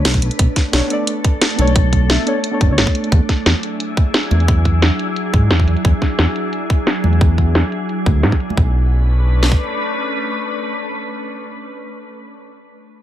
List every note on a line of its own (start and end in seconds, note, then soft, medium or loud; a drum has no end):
0.00 3.08 A3 medium
0.00 0.70 B3 medium
0.00 0.71 D4 medium
0.00 8.54 D4 medium
0.00 0.72 A4 medium
0.00 0.37 B4 medium
0.00 0.73 C#5 medium
0.05 0.21 B1 medium
0.05 snare loud
0.05 closed hi-hat loud
0.14 kick medium
0.14 closed hi-hat soft
0.22 0.30 B1 medium
0.22 closed hi-hat medium
0.31 closed hi-hat soft
0.39 0.47 B1 loud
0.39 3.09 A4 medium
0.39 kick loud
0.39 closed hi-hat loud
0.56 kick medium
0.56 snare soft
0.56 closed hi-hat medium
0.72 0.81 B1 loud
0.72 0.86 B3 medium
0.72 0.88 D4 medium
0.72 0.89 A4 medium
0.72 0.89 C#5 medium
0.72 snare loud
0.72 closed hi-hat loud
0.88 1.55 B3 medium
0.88 1.56 D4 medium
0.88 1.57 A4 medium
0.88 closed hi-hat medium
0.93 1.58 D5 medium
1.07 closed hi-hat loud
1.24 kick loud
1.24 closed hi-hat medium
1.42 snare loud
1.42 closed hi-hat medium
1.50 closed hi-hat soft
1.56 2.08 B1 medium
1.56 2.06 B3 medium
1.56 2.07 D4 medium
1.56 2.08 A4 medium
1.56 closed hi-hat medium
1.56 high conga medium
1.61 2.09 C#5 medium
1.67 closed hi-hat soft
1.76 kick loud
1.76 closed hi-hat medium
1.93 kick medium
1.93 closed hi-hat medium
2.08 2.18 B1 loud
2.08 2.24 B3 medium
2.08 2.25 D4 medium
2.08 2.25 A4 medium
2.08 2.26 E5 medium
2.08 snare loud
2.08 closed hi-hat medium
2.26 2.37 B3 loud
2.26 2.37 D4 medium
2.26 2.38 A4 medium
2.26 2.38 C#5 loud
2.26 closed hi-hat medium
2.44 closed hi-hat medium
2.51 2.66 B3 medium
2.51 2.68 D4 medium
2.51 2.68 A4 medium
2.51 2.69 C#5 medium
2.61 2.69 F#1 loud
2.61 kick loud
2.61 closed hi-hat medium
2.67 2.79 D2 medium
2.67 3.10 B3 medium
2.67 3.11 D4 medium
2.67 3.11 A4 medium
2.72 3.12 C#5 medium
2.78 2.86 F#1 medium
2.78 snare loud
2.78 closed hi-hat medium
2.87 kick medium
2.87 closed hi-hat soft
2.95 closed hi-hat medium
3.04 closed hi-hat soft
3.12 3.20 E2 loud
3.12 8.53 F#3 medium
3.12 8.53 E4 medium
3.12 8.54 G#4 medium
3.12 kick loud
3.12 closed hi-hat medium
3.29 kick medium
3.29 snare soft
3.29 closed hi-hat medium
3.46 3.54 E2 loud
3.46 snare loud
3.46 closed hi-hat medium
3.63 closed hi-hat medium
3.80 closed hi-hat medium
3.97 kick loud
3.97 closed hi-hat medium
4.14 snare loud
4.14 closed hi-hat medium
4.23 closed hi-hat soft
4.31 4.81 E2 medium
4.31 closed hi-hat medium
4.31 high conga medium
4.40 closed hi-hat soft
4.48 kick loud
4.48 closed hi-hat medium
4.65 kick medium
4.65 closed hi-hat medium
4.82 4.90 E2 loud
4.82 snare loud
4.82 closed hi-hat medium
4.99 closed hi-hat medium
5.16 closed hi-hat medium
5.34 5.49 G#2 loud
5.34 kick medium
5.34 closed hi-hat medium
5.51 5.66 E2 medium
5.51 snare loud
5.51 closed hi-hat medium
5.60 kick medium
5.60 closed hi-hat soft
5.68 5.76 E2 medium
5.68 closed hi-hat medium
5.77 closed hi-hat soft
5.85 5.93 E2 medium
5.85 kick loud
5.85 closed hi-hat medium
6.02 kick medium
6.02 snare soft
6.02 closed hi-hat medium
6.19 6.27 E2 loud
6.19 snare loud
6.19 closed hi-hat medium
6.36 closed hi-hat medium
6.53 closed hi-hat medium
6.70 kick medium
6.70 closed hi-hat medium
6.87 snare loud
6.87 closed hi-hat medium
6.96 closed hi-hat soft
7.04 7.54 E2 medium
7.04 closed hi-hat medium
7.04 high conga medium
7.13 closed hi-hat soft
7.21 kick loud
7.21 closed hi-hat medium
7.38 kick medium
7.38 closed hi-hat medium
7.55 7.63 E2 loud
7.55 snare loud
7.55 closed hi-hat medium
7.72 closed hi-hat medium
7.89 closed hi-hat medium
8.06 8.14 D2 loud
8.06 kick medium
8.06 closed hi-hat medium
8.15 8.25 D2 medium
8.23 8.31 G#2 medium
8.23 snare loud
8.23 closed hi-hat medium
8.32 kick medium
8.32 snare soft
8.32 closed hi-hat soft
8.40 closed hi-hat medium
8.49 closed hi-hat soft
8.49 high conga medium
8.57 9.56 B1 medium
8.57 12.06 A3 medium
8.57 12.06 C#4 medium
8.57 12.06 D4 medium
8.57 12.06 B4 medium
8.57 kick loud
9.43 snare medium
9.52 kick medium